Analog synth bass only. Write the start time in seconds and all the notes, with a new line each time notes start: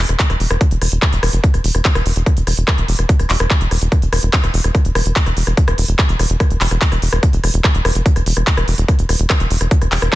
0.09 E1
0.30 E1
0.40 E1
0.50 E1
0.71 E1
0.82 E1
0.92 E1
1.13 E1
1.23 E1
1.33 F1
1.54 E1
1.64 E1
1.75 E1
1.95 E1
2.06 E1
2.16 E1
2.37 E1
2.47 E1
2.57 E1
2.78 E1
2.88 E1
2.99 E1
3.19 E1
3.30 E1
3.40 E1
3.61 E1
3.71 E1
3.82 E1
4.02 E1
4.13 E1
4.23 E1
4.44 E1
4.54 E1
4.64 E1
4.85 E1
4.95 E1
5.06 E1
5.26 E1
5.37 E1
5.47 E1
5.68 E1
5.78 E1
5.88 E1
6.09 E1
6.19 E1
6.30 E1
6.50 E1
6.61 E1
6.71 E1
6.92 E1
7.02 E1
7.13 E1
7.33 E1
7.44 E1
7.54 E1
7.75 E1
7.85 E1
7.95 F1
8.16 E1
8.26 E1
8.37 E1
8.57 E1
8.68 E1
8.78 E1
8.99 E1
9.09 E1
9.19 E1
9.40 E1
9.51 E1
9.61 E1
9.82 E1
9.92 E1
10.02 E1